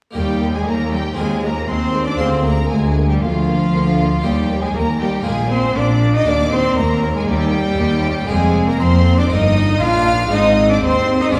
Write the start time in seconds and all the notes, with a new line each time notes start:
0.11 A#3 D#4 G4
0.15 D#2 G3 A#3 G4 G5
0.41 A#3
0.54 G#3 G#4 G#5
0.66 D#2 A#3 A#4 A#5
0.92 G3 A#3 G4 G5
1.13 C4 F4 G#4 G#5
1.18 D#2 G#3 G#4
1.41 G#3 A#3 A#4 A#5
1.68 D#2 G#3 C4 C5 C6
1.94 G#3
2.07 D4 D5 D6
2.15 A#3 F4 G#4 C6
2.19 D2 A#3 C4 C5
2.45 A#3 A#4 A#5
2.70 D2 G#3 A#3 G#4 G#5
2.97 A#3
3.09 G3 G4 G5
3.21 D2 F3 A#3 F4 F5
3.48 A#3
3.73 D2 A#3
3.99 A#3
4.20 A#3 D#4 G4
4.24 D#2 G3 A#3 G4 G5
4.50 A#3
4.62 G#3 G#4 G#5
4.75 D#2 A#3 A#4 A#5
4.99 G3 A#3 G4 G5
5.21 A#3 F4 G#4
5.25 A#1 A#2 G#3 A#3 G#4 G#5
5.50 A#3 C4 C5 C6
5.75 A#1 A#2 A#3 D4 D5 D6
6.02 A#3
6.13 D#4 D#5 D#6
6.22 A#3 D4 D#4 G4 D6
6.27 D#2 A#3 D5
6.51 A#3 C4 C5 C6
6.77 D#2 A#3 A#4 A#5
7.03 A#3
7.15 G#3 G#4 G#5
7.27 D#2 G3 A#3 G4 G5
7.54 A#3
7.79 D#2 A#3
8.04 A#3
8.26 F1 G#3 A#3 D4 G#4 A#4 G#5
8.30 F2 C4
8.67 A#3 A#4 A#5
8.80 F2 F3 A#3 C4 C5 C6
9.18 D4 D5 D6
9.27 G1 A#3 D#4 A#4
9.31 G2 A#3 D#4 D#5 D#6
9.56 D#4
9.81 A#1 A#2 D4 F4 F5 F6
10.27 G#3 C4 D#4
10.32 G#1 G#2 C4 D#4 G#4 D#5 D#6
10.70 D4 D5 D6
10.83 D#2 C4 C5 C6
11.21 D#4 D#5 D#6
11.29 G#3 A#3 F4
11.34 G#1 G#2 A#3 D4 A#4 D5 D6